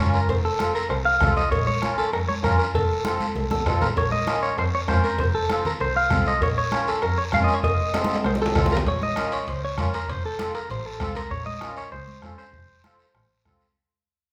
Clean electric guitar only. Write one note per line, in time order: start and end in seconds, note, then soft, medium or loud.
0.00 0.12 C#5 loud
0.15 0.29 A#4 medium
0.30 0.35 C5 medium
0.45 0.73 A4 medium
0.75 0.89 A#4 medium
0.90 0.95 C5 loud
1.05 1.34 F5 loud
1.37 1.51 D#5 medium
1.51 1.66 C#5 medium
1.67 1.96 C#5 loud
1.98 2.12 A4 medium
2.13 2.18 A#4 medium
2.29 2.34 C#5 medium
2.44 2.57 A#4 medium
2.59 2.64 A#4 medium
2.75 3.50 A4 medium
3.51 3.81 A4 medium
3.82 3.87 A#4 medium
3.98 4.11 C#5 medium
4.12 4.40 D#5 loud
4.43 4.57 C#5 medium
4.59 4.64 C5 medium
4.75 4.80 C#5 medium
4.89 5.03 C5 medium
5.04 5.18 A#4 medium
5.20 5.25 C5 medium
5.35 5.63 A4 medium
5.66 5.71 A#4 medium
5.81 5.96 C5 medium
5.96 6.24 F5 loud
6.28 6.42 D#5 medium
6.43 6.48 C#5 medium
6.58 6.89 C#5 medium
6.88 7.02 A4 medium
7.03 7.17 A#4 medium
7.18 7.23 C#5 medium
7.34 7.38 F5 medium
7.44 7.53 D#5 medium
7.54 7.58 C#5 medium
7.64 8.21 D#5 medium
8.26 8.31 C5 medium
8.42 8.70 A4 medium
8.73 8.78 A#4 medium
8.88 9.03 C#5 loud
9.03 9.31 D#5 loud
9.33 9.49 C#5 medium
9.49 9.63 C5 medium
9.65 9.92 C#5 medium
9.95 10.10 A#4 medium
10.10 10.25 C5 medium
10.26 10.53 A4 medium
10.55 10.69 A#4 medium
10.71 10.86 C5 medium
10.86 11.16 A4 medium
11.16 11.32 A#4 medium
11.31 11.45 C#5 medium
11.46 11.75 D#5 medium
11.78 11.91 C#5 medium
11.92 12.35 C5 medium
12.38 13.42 C5 medium